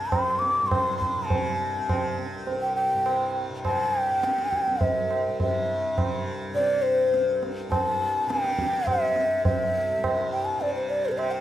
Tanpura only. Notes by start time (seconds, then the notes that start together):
Already playing: G2 C3
0.01 C2
0.61 G2
1.17 C3
1.78 C3
2.35 C2
2.94 G2
3.50 C3
4.10 C3
4.69 C2
5.27 G2
5.40 G2
5.97 C3
6.53 C3
7.10 C2
7.68 G2
8.26 C3
8.85 C3
9.40 C2
9.98 G2
10.56 C3
11.11 C3